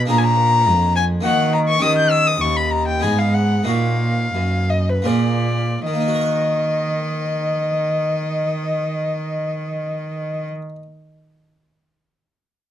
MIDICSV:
0, 0, Header, 1, 4, 480
1, 0, Start_track
1, 0, Key_signature, -6, "minor"
1, 0, Tempo, 578035
1, 87, Time_signature, 3, 2, 24, 8
1, 2009, Tempo, 626959
1, 2969, Tempo, 674157
1, 3449, Tempo, 723764
1, 3929, Tempo, 790514
1, 4409, Tempo, 805369
1, 8490, End_track
2, 0, Start_track
2, 0, Title_t, "Violin"
2, 0, Program_c, 0, 40
2, 87, Note_on_c, 0, 82, 90
2, 152, Note_on_c, 0, 80, 75
2, 165, Note_off_c, 0, 82, 0
2, 199, Note_on_c, 0, 82, 97
2, 212, Note_off_c, 0, 80, 0
2, 796, Note_off_c, 0, 82, 0
2, 800, Note_on_c, 0, 80, 83
2, 866, Note_off_c, 0, 80, 0
2, 1037, Note_on_c, 0, 78, 80
2, 1271, Note_off_c, 0, 78, 0
2, 1279, Note_on_c, 0, 82, 75
2, 1326, Note_off_c, 0, 82, 0
2, 1397, Note_on_c, 0, 85, 84
2, 1513, Note_on_c, 0, 87, 93
2, 1526, Note_off_c, 0, 85, 0
2, 1636, Note_off_c, 0, 87, 0
2, 1646, Note_on_c, 0, 91, 81
2, 1755, Note_on_c, 0, 88, 90
2, 1768, Note_off_c, 0, 91, 0
2, 1887, Note_on_c, 0, 87, 82
2, 1900, Note_off_c, 0, 88, 0
2, 2003, Note_on_c, 0, 85, 81
2, 2015, Note_off_c, 0, 87, 0
2, 2123, Note_on_c, 0, 83, 78
2, 2135, Note_off_c, 0, 85, 0
2, 2242, Note_on_c, 0, 82, 77
2, 2253, Note_off_c, 0, 83, 0
2, 2357, Note_off_c, 0, 82, 0
2, 2361, Note_on_c, 0, 79, 73
2, 2473, Note_on_c, 0, 80, 74
2, 2484, Note_off_c, 0, 79, 0
2, 2600, Note_on_c, 0, 77, 75
2, 2612, Note_off_c, 0, 80, 0
2, 2716, Note_on_c, 0, 78, 73
2, 2728, Note_off_c, 0, 77, 0
2, 2963, Note_off_c, 0, 78, 0
2, 2967, Note_on_c, 0, 77, 81
2, 3684, Note_on_c, 0, 75, 66
2, 3693, Note_off_c, 0, 77, 0
2, 3812, Note_on_c, 0, 71, 62
2, 3822, Note_off_c, 0, 75, 0
2, 3927, Note_on_c, 0, 74, 69
2, 3937, Note_off_c, 0, 71, 0
2, 4403, Note_off_c, 0, 74, 0
2, 4407, Note_on_c, 0, 75, 71
2, 7156, Note_off_c, 0, 75, 0
2, 8490, End_track
3, 0, Start_track
3, 0, Title_t, "Harpsichord"
3, 0, Program_c, 1, 6
3, 44, Note_on_c, 1, 58, 44
3, 57, Note_on_c, 1, 62, 44
3, 70, Note_on_c, 1, 68, 46
3, 83, Note_on_c, 1, 46, 48
3, 525, Note_off_c, 1, 46, 0
3, 554, Note_on_c, 1, 41, 56
3, 985, Note_off_c, 1, 58, 0
3, 991, Note_off_c, 1, 62, 0
3, 998, Note_off_c, 1, 68, 0
3, 999, Note_off_c, 1, 41, 0
3, 1002, Note_on_c, 1, 58, 46
3, 1012, Note_on_c, 1, 63, 48
3, 1026, Note_on_c, 1, 66, 44
3, 1038, Note_on_c, 1, 51, 56
3, 1481, Note_off_c, 1, 63, 0
3, 1481, Note_on_c, 1, 61, 45
3, 1484, Note_off_c, 1, 51, 0
3, 1484, Note_off_c, 1, 58, 0
3, 1491, Note_on_c, 1, 63, 41
3, 1497, Note_off_c, 1, 66, 0
3, 1505, Note_on_c, 1, 67, 46
3, 1517, Note_on_c, 1, 51, 49
3, 1976, Note_off_c, 1, 51, 0
3, 2012, Note_on_c, 1, 39, 48
3, 2434, Note_off_c, 1, 61, 0
3, 2439, Note_off_c, 1, 63, 0
3, 2446, Note_off_c, 1, 67, 0
3, 2450, Note_off_c, 1, 39, 0
3, 2450, Note_on_c, 1, 59, 44
3, 2460, Note_on_c, 1, 63, 46
3, 2471, Note_on_c, 1, 68, 45
3, 2483, Note_on_c, 1, 44, 47
3, 2939, Note_on_c, 1, 58, 41
3, 2940, Note_off_c, 1, 44, 0
3, 2940, Note_off_c, 1, 59, 0
3, 2940, Note_off_c, 1, 63, 0
3, 2949, Note_on_c, 1, 63, 44
3, 2951, Note_off_c, 1, 68, 0
3, 2962, Note_on_c, 1, 66, 38
3, 2971, Note_on_c, 1, 46, 45
3, 3421, Note_off_c, 1, 46, 0
3, 3450, Note_on_c, 1, 42, 46
3, 3889, Note_off_c, 1, 58, 0
3, 3894, Note_off_c, 1, 63, 0
3, 3897, Note_on_c, 1, 58, 38
3, 3900, Note_off_c, 1, 66, 0
3, 3903, Note_off_c, 1, 42, 0
3, 3908, Note_on_c, 1, 65, 40
3, 3917, Note_on_c, 1, 68, 36
3, 3928, Note_on_c, 1, 46, 43
3, 4380, Note_off_c, 1, 58, 0
3, 4385, Note_off_c, 1, 46, 0
3, 4385, Note_off_c, 1, 65, 0
3, 4389, Note_off_c, 1, 68, 0
3, 4412, Note_on_c, 1, 51, 42
3, 4453, Note_on_c, 1, 58, 40
3, 4494, Note_on_c, 1, 63, 41
3, 4538, Note_on_c, 1, 66, 41
3, 4577, Note_on_c, 1, 70, 39
3, 4619, Note_on_c, 1, 78, 38
3, 7161, Note_off_c, 1, 51, 0
3, 7202, Note_off_c, 1, 58, 0
3, 7243, Note_off_c, 1, 63, 0
3, 7287, Note_off_c, 1, 66, 0
3, 7327, Note_off_c, 1, 70, 0
3, 7368, Note_off_c, 1, 78, 0
3, 8490, End_track
4, 0, Start_track
4, 0, Title_t, "Cello"
4, 0, Program_c, 2, 42
4, 89, Note_on_c, 2, 46, 67
4, 562, Note_on_c, 2, 41, 59
4, 574, Note_off_c, 2, 46, 0
4, 1036, Note_off_c, 2, 41, 0
4, 1040, Note_on_c, 2, 51, 66
4, 1509, Note_off_c, 2, 51, 0
4, 1516, Note_on_c, 2, 51, 66
4, 1999, Note_off_c, 2, 51, 0
4, 2008, Note_on_c, 2, 39, 59
4, 2480, Note_on_c, 2, 44, 59
4, 2491, Note_off_c, 2, 39, 0
4, 2965, Note_off_c, 2, 44, 0
4, 2970, Note_on_c, 2, 46, 60
4, 3439, Note_off_c, 2, 46, 0
4, 3451, Note_on_c, 2, 42, 57
4, 3921, Note_off_c, 2, 42, 0
4, 3931, Note_on_c, 2, 46, 57
4, 4400, Note_off_c, 2, 46, 0
4, 4411, Note_on_c, 2, 51, 56
4, 7160, Note_off_c, 2, 51, 0
4, 8490, End_track
0, 0, End_of_file